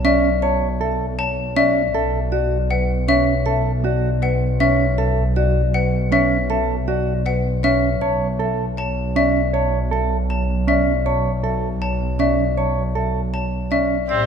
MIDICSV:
0, 0, Header, 1, 7, 480
1, 0, Start_track
1, 0, Tempo, 379747
1, 537, Time_signature, 4, 2, 24, 8
1, 18026, End_track
2, 0, Start_track
2, 0, Title_t, "Xylophone"
2, 0, Program_c, 0, 13
2, 59, Note_on_c, 0, 76, 79
2, 370, Note_off_c, 0, 76, 0
2, 1500, Note_on_c, 0, 81, 65
2, 1810, Note_off_c, 0, 81, 0
2, 1978, Note_on_c, 0, 76, 86
2, 2289, Note_off_c, 0, 76, 0
2, 3420, Note_on_c, 0, 78, 65
2, 3730, Note_off_c, 0, 78, 0
2, 3901, Note_on_c, 0, 76, 85
2, 4210, Note_off_c, 0, 76, 0
2, 5343, Note_on_c, 0, 78, 63
2, 5651, Note_off_c, 0, 78, 0
2, 5818, Note_on_c, 0, 76, 81
2, 6129, Note_off_c, 0, 76, 0
2, 7260, Note_on_c, 0, 78, 66
2, 7570, Note_off_c, 0, 78, 0
2, 7740, Note_on_c, 0, 76, 79
2, 8050, Note_off_c, 0, 76, 0
2, 9179, Note_on_c, 0, 78, 59
2, 9489, Note_off_c, 0, 78, 0
2, 9657, Note_on_c, 0, 76, 75
2, 9969, Note_off_c, 0, 76, 0
2, 11100, Note_on_c, 0, 81, 61
2, 11410, Note_off_c, 0, 81, 0
2, 11582, Note_on_c, 0, 76, 73
2, 11890, Note_off_c, 0, 76, 0
2, 13020, Note_on_c, 0, 81, 53
2, 13330, Note_off_c, 0, 81, 0
2, 13501, Note_on_c, 0, 76, 71
2, 13810, Note_off_c, 0, 76, 0
2, 14937, Note_on_c, 0, 81, 55
2, 15249, Note_off_c, 0, 81, 0
2, 15418, Note_on_c, 0, 76, 66
2, 15729, Note_off_c, 0, 76, 0
2, 16857, Note_on_c, 0, 81, 52
2, 17169, Note_off_c, 0, 81, 0
2, 17337, Note_on_c, 0, 76, 66
2, 17649, Note_off_c, 0, 76, 0
2, 18026, End_track
3, 0, Start_track
3, 0, Title_t, "Marimba"
3, 0, Program_c, 1, 12
3, 64, Note_on_c, 1, 74, 84
3, 371, Note_off_c, 1, 74, 0
3, 535, Note_on_c, 1, 81, 79
3, 848, Note_off_c, 1, 81, 0
3, 1022, Note_on_c, 1, 76, 65
3, 1331, Note_off_c, 1, 76, 0
3, 1499, Note_on_c, 1, 73, 68
3, 1810, Note_off_c, 1, 73, 0
3, 1978, Note_on_c, 1, 74, 85
3, 2289, Note_off_c, 1, 74, 0
3, 2459, Note_on_c, 1, 76, 73
3, 2770, Note_off_c, 1, 76, 0
3, 2932, Note_on_c, 1, 74, 66
3, 3247, Note_off_c, 1, 74, 0
3, 3418, Note_on_c, 1, 71, 67
3, 3729, Note_off_c, 1, 71, 0
3, 3897, Note_on_c, 1, 73, 83
3, 4209, Note_off_c, 1, 73, 0
3, 4370, Note_on_c, 1, 76, 75
3, 4686, Note_off_c, 1, 76, 0
3, 4857, Note_on_c, 1, 74, 63
3, 5169, Note_off_c, 1, 74, 0
3, 5336, Note_on_c, 1, 71, 68
3, 5649, Note_off_c, 1, 71, 0
3, 5823, Note_on_c, 1, 73, 81
3, 6131, Note_off_c, 1, 73, 0
3, 6297, Note_on_c, 1, 76, 72
3, 6609, Note_off_c, 1, 76, 0
3, 6779, Note_on_c, 1, 74, 68
3, 7090, Note_off_c, 1, 74, 0
3, 7263, Note_on_c, 1, 71, 65
3, 7571, Note_off_c, 1, 71, 0
3, 7734, Note_on_c, 1, 73, 81
3, 8048, Note_off_c, 1, 73, 0
3, 8213, Note_on_c, 1, 76, 72
3, 8527, Note_off_c, 1, 76, 0
3, 8693, Note_on_c, 1, 74, 62
3, 9008, Note_off_c, 1, 74, 0
3, 9173, Note_on_c, 1, 71, 64
3, 9488, Note_off_c, 1, 71, 0
3, 9647, Note_on_c, 1, 73, 78
3, 9965, Note_off_c, 1, 73, 0
3, 10130, Note_on_c, 1, 81, 73
3, 10446, Note_off_c, 1, 81, 0
3, 10616, Note_on_c, 1, 76, 65
3, 10928, Note_off_c, 1, 76, 0
3, 11090, Note_on_c, 1, 73, 65
3, 11406, Note_off_c, 1, 73, 0
3, 11580, Note_on_c, 1, 74, 74
3, 11890, Note_off_c, 1, 74, 0
3, 12058, Note_on_c, 1, 81, 69
3, 12369, Note_off_c, 1, 81, 0
3, 12550, Note_on_c, 1, 76, 62
3, 12853, Note_off_c, 1, 76, 0
3, 13025, Note_on_c, 1, 73, 58
3, 13332, Note_off_c, 1, 73, 0
3, 13500, Note_on_c, 1, 74, 76
3, 13810, Note_off_c, 1, 74, 0
3, 13980, Note_on_c, 1, 81, 71
3, 14290, Note_off_c, 1, 81, 0
3, 14458, Note_on_c, 1, 76, 54
3, 14769, Note_off_c, 1, 76, 0
3, 14936, Note_on_c, 1, 73, 58
3, 15248, Note_off_c, 1, 73, 0
3, 15410, Note_on_c, 1, 74, 72
3, 15726, Note_off_c, 1, 74, 0
3, 15896, Note_on_c, 1, 81, 61
3, 16208, Note_off_c, 1, 81, 0
3, 16375, Note_on_c, 1, 76, 56
3, 16688, Note_off_c, 1, 76, 0
3, 16857, Note_on_c, 1, 73, 56
3, 17169, Note_off_c, 1, 73, 0
3, 17326, Note_on_c, 1, 74, 70
3, 17645, Note_off_c, 1, 74, 0
3, 17811, Note_on_c, 1, 74, 70
3, 18026, Note_off_c, 1, 74, 0
3, 18026, End_track
4, 0, Start_track
4, 0, Title_t, "String section"
4, 0, Program_c, 2, 48
4, 17824, Note_on_c, 2, 72, 63
4, 17826, Note_on_c, 2, 67, 62
4, 18026, Note_off_c, 2, 67, 0
4, 18026, Note_off_c, 2, 72, 0
4, 18026, End_track
5, 0, Start_track
5, 0, Title_t, "Clean electric guitar"
5, 0, Program_c, 3, 27
5, 57, Note_on_c, 3, 61, 70
5, 369, Note_off_c, 3, 61, 0
5, 542, Note_on_c, 3, 73, 62
5, 850, Note_off_c, 3, 73, 0
5, 1019, Note_on_c, 3, 69, 64
5, 1330, Note_off_c, 3, 69, 0
5, 1977, Note_on_c, 3, 61, 66
5, 2289, Note_off_c, 3, 61, 0
5, 2459, Note_on_c, 3, 69, 63
5, 2769, Note_off_c, 3, 69, 0
5, 2936, Note_on_c, 3, 66, 62
5, 3248, Note_off_c, 3, 66, 0
5, 3897, Note_on_c, 3, 61, 70
5, 4209, Note_off_c, 3, 61, 0
5, 4375, Note_on_c, 3, 69, 61
5, 4688, Note_off_c, 3, 69, 0
5, 4860, Note_on_c, 3, 66, 65
5, 5170, Note_off_c, 3, 66, 0
5, 5821, Note_on_c, 3, 61, 68
5, 6130, Note_off_c, 3, 61, 0
5, 6298, Note_on_c, 3, 69, 61
5, 6609, Note_off_c, 3, 69, 0
5, 6783, Note_on_c, 3, 66, 62
5, 7091, Note_off_c, 3, 66, 0
5, 7736, Note_on_c, 3, 61, 68
5, 8048, Note_off_c, 3, 61, 0
5, 8218, Note_on_c, 3, 69, 59
5, 8529, Note_off_c, 3, 69, 0
5, 8696, Note_on_c, 3, 66, 61
5, 9008, Note_off_c, 3, 66, 0
5, 9657, Note_on_c, 3, 61, 65
5, 9969, Note_off_c, 3, 61, 0
5, 10133, Note_on_c, 3, 73, 60
5, 10447, Note_off_c, 3, 73, 0
5, 10609, Note_on_c, 3, 69, 61
5, 10926, Note_off_c, 3, 69, 0
5, 11576, Note_on_c, 3, 61, 66
5, 11888, Note_off_c, 3, 61, 0
5, 12052, Note_on_c, 3, 73, 59
5, 12367, Note_off_c, 3, 73, 0
5, 12531, Note_on_c, 3, 69, 57
5, 12847, Note_off_c, 3, 69, 0
5, 13493, Note_on_c, 3, 61, 60
5, 13807, Note_off_c, 3, 61, 0
5, 13979, Note_on_c, 3, 73, 53
5, 14290, Note_off_c, 3, 73, 0
5, 14453, Note_on_c, 3, 69, 55
5, 14767, Note_off_c, 3, 69, 0
5, 15412, Note_on_c, 3, 61, 60
5, 15727, Note_off_c, 3, 61, 0
5, 15894, Note_on_c, 3, 73, 48
5, 16208, Note_off_c, 3, 73, 0
5, 16373, Note_on_c, 3, 69, 53
5, 16688, Note_off_c, 3, 69, 0
5, 17336, Note_on_c, 3, 61, 54
5, 17648, Note_off_c, 3, 61, 0
5, 18026, End_track
6, 0, Start_track
6, 0, Title_t, "Oboe"
6, 0, Program_c, 4, 68
6, 17817, Note_on_c, 4, 60, 35
6, 17985, Note_off_c, 4, 60, 0
6, 18026, End_track
7, 0, Start_track
7, 0, Title_t, "Double bass section"
7, 0, Program_c, 5, 48
7, 0, Note_on_c, 5, 35, 64
7, 2311, Note_off_c, 5, 35, 0
7, 2453, Note_on_c, 5, 35, 71
7, 9988, Note_off_c, 5, 35, 0
7, 10130, Note_on_c, 5, 35, 68
7, 17667, Note_off_c, 5, 35, 0
7, 17815, Note_on_c, 5, 45, 65
7, 18026, Note_off_c, 5, 45, 0
7, 18026, End_track
0, 0, End_of_file